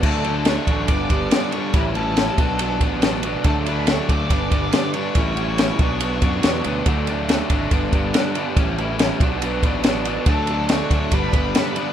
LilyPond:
<<
  \new Staff \with { instrumentName = "Lead electric guitar" } { \time 4/4 \key d \major \tempo 4 = 141 a'4 cis''4 d''4 d''8 cis''8 | b'8 a'2 r4. | a'8 b'8 cis''8 d''2 cis''8~ | cis''2.~ cis''8 r8 |
r1 | r1 | a'4 cis''4 b'2 | }
  \new Staff \with { instrumentName = "Overdriven electric guitar" } { \clef bass \time 4/4 \key d \major <d fis a d'>8 <d fis a d'>8 <d fis a d'>8 <d fis a d'>8 <g, d g b d'>8 <g, d g b d'>8 <g, d g b d'>8 <g, d g b d'>8 | <a, e g cis' e'>8 <a, e g cis' e'>8 <a, e g cis' e'>8 <b, fis b d'>8 <b, fis b d'>8 <b, fis b d'>8 <b, fis b d'>8 <b, fis b d'>8 | <d fis a d'>8 <d fis a d'>8 <d fis a d'>8 <d fis a d'>8 <g, d g b d'>8 <g, d g b d'>8 <g, d g b d'>8 <g, d g b d'>8 | <a, e g cis' e'>8 <a, e g cis' e'>8 <a, e g cis' e'>8 <b, fis b d'>8 <b, fis b d'>8 <b, fis b d'>8 <b, fis b d'>8 <b, fis b d'>8 |
<d fis a d'>8 <d fis a d'>8 <d fis a d'>8 <d fis a d'>8 <g, d g b d'>8 <g, d g b d'>8 <g, d g b d'>8 <g, d g b d'>8 | <a, e g cis' e'>8 <a, e g cis' e'>8 <a, e g cis' e'>8 <b, fis b d'>8 <b, fis b d'>8 <b, fis b d'>8 <b, fis b d'>8 <b, fis b d'>8 | <d fis a d'>8 <d fis a d'>8 <d fis a d'>8 <d fis a d'>8 <g, d g b d'>8 <g, d g b d'>8 <g, d g b d'>8 <g, d g b d'>8 | }
  \new Staff \with { instrumentName = "Overdriven electric guitar" } { \clef bass \time 4/4 \key d \major <d fis a d'>8 <d fis a d'>8 <d fis a d'>8 <d fis a d'>8 <g, d g b d'>8 <g, d g b d'>8 <g, d g b d'>8 <g, d g b d'>8 | <a, e g cis' e'>8 <a, e g cis' e'>8 <a, e g cis' e'>8 <b, fis b d'>8 <b, fis b d'>8 <b, fis b d'>8 <b, fis b d'>8 <b, fis b d'>8 | <d fis a d'>8 <d fis a d'>8 <d fis a d'>8 <d fis a d'>8 <g, d g b d'>8 <g, d g b d'>8 <g, d g b d'>8 <g, d g b d'>8 | <a, e g cis' e'>8 <a, e g cis' e'>8 <a, e g cis' e'>8 <b, fis b d'>8 <b, fis b d'>8 <b, fis b d'>8 <b, fis b d'>8 <b, fis b d'>8 |
<d fis a d'>8 <d fis a d'>8 <d fis a d'>8 <d fis a d'>8 <g, d g b d'>8 <g, d g b d'>8 <g, d g b d'>8 <g, d g b d'>8 | <a, e g cis' e'>8 <a, e g cis' e'>8 <a, e g cis' e'>8 <b, fis b d'>8 <b, fis b d'>8 <b, fis b d'>8 <b, fis b d'>8 <b, fis b d'>8 | <d fis a d'>8 <d fis a d'>8 <d fis a d'>8 <d fis a d'>8 <g, d g b d'>8 <g, d g b d'>8 <g, d g b d'>8 <g, d g b d'>8 | }
  \new Staff \with { instrumentName = "Fingered electric bass" } { \clef bass \time 4/4 \key d \major d,4. a,,8 g,,8 g,,8 r4 | a,,4. b,,4 a,,4. | d,4. d,8 g,,8 g,,8 r4 | a,,4. b,,4 fis,8 e,8 d,8 |
d,4. gis,,8 g,,8 g,,8 r4 | a,,4. b,,4 a,,4. | d,4. d,8 g,,8 g,,8 r4 | }
  \new DrumStaff \with { instrumentName = "Drums" } \drummode { \time 4/4 <cymc bd>8 cymr8 <cymr sn>8 <bd cymr>8 <bd cymr>8 <bd cymr>8 <cymr sn>8 cymr8 | <bd cymr>8 cymr8 <cymr sn>8 <bd cymr>8 cymr8 <bd cymr>8 <cymr sn>8 cymr8 | <bd cymr>8 cymr8 <cymr sn>8 <bd cymr>8 <bd cymr>8 <bd cymr>8 <cymr sn>8 cymr8 | <bd cymr>8 cymr8 <cymr sn>8 <bd cymr>8 cymr8 <bd cymr>8 <cymr sn>8 cymr8 |
<bd cymr>8 cymr8 <cymr sn>8 <bd cymr>8 <bd cymr>8 <bd cymr>8 <cymr sn>8 cymr8 | <bd cymr>8 cymr8 <cymr sn>8 <bd cymr>8 cymr8 <bd cymr>8 <cymr sn>8 cymr8 | <bd cymr>8 cymr8 <cymr sn>8 <bd cymr>8 <bd cymr>8 <bd cymr>8 <cymr sn>8 cymr8 | }
>>